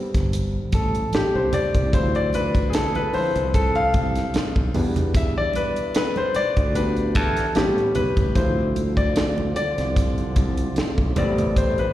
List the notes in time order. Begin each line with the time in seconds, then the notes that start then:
Already playing: G3 B3 C4 D4
0.14 G1, kick, snare, closed hi-hat
0.33 closed hi-hat, muted conga
0.72 A1 A4, kick, closed hi-hat, high conga
0.95 closed hi-hat
1.13 G4, muted fingered electric bass stroke, snare, closed hi-hat, muted conga, high conga
1.35 C2 C5
1.53 D5, closed hi-hat, muted conga, high conga, low conga
1.75 C2, kick, closed hi-hat, low conga
1.93 D2 F3 C4 E4 C5, kick, closed hi-hat, muted conga
2.15 D5, closed hi-hat
2.33 B4, closed hi-hat, high conga
2.55 kick, closed hi-hat
2.70 G#4, closed hi-hat
2.74 A4, snare, muted conga
2.95 B4, closed hi-hat, high conga
3.13 F3 C4 E4 C5, muted fingered electric bass stroke, open hi-hat, muted conga
3.36 C2, closed hi-hat
3.54 A4, kick, closed hi-hat
3.75 F5, closed hi-hat
3.94 C2, kick, closed hi-hat, muted conga, high conga
4.16 snare, closed hi-hat
4.34 muted fingered electric bass stroke, snare, closed hi-hat, high conga
4.56 B1, kick
4.74 E2 G3 B3 D4, open hi-hat, muted conga, high conga, low conga
4.96 closed hi-hat, low conga
5.14 E5, kick, closed hi-hat, muted conga
5.38 D5
5.53 B4, closed hi-hat, muted conga, high conga
5.76 closed hi-hat
5.95 B4, snare, closed hi-hat
6.16 C5, closed hi-hat, high conga
6.35 D5, muted fingered electric bass stroke, closed hi-hat, muted conga
6.57 D2, kick, closed hi-hat
6.75 G3 B3 D4 B4, closed hi-hat, muted conga
6.97 closed hi-hat
7.15 E2 A4, kick, closed hi-hat, muted conga, high conga
7.37 snare, closed hi-hat
7.55 A1 G3 B3 C#4 G4, snare, closed hi-hat, muted conga, high conga
7.78 closed hi-hat
7.95 B1 B4, closed hi-hat, muted conga, high conga, low conga
8.17 A1, kick, closed hi-hat, low conga
8.34 D2 C3 D3 F3 C4 E4 C5, kick, closed hi-hat
8.76 closed hi-hat, high conga
8.97 D5, kick, closed hi-hat
9.16 snare, closed hi-hat, muted conga
9.38 high conga
9.56 D5, muted fingered electric bass stroke, closed hi-hat, muted conga
9.78 C2, snare, closed hi-hat
9.96 kick, closed hi-hat
10.18 closed hi-hat
10.36 C2, kick, closed hi-hat, high conga
10.57 closed hi-hat
10.76 muted fingered electric bass stroke, snare, closed hi-hat, muted conga, high conga
10.98 B1, kick
11.16 A1 G3 A3 B3 C4 G4 D5, closed hi-hat, muted conga, high conga, low conga
11.38 closed hi-hat, low conga
11.56 C5, kick, closed hi-hat
11.78 B4, closed hi-hat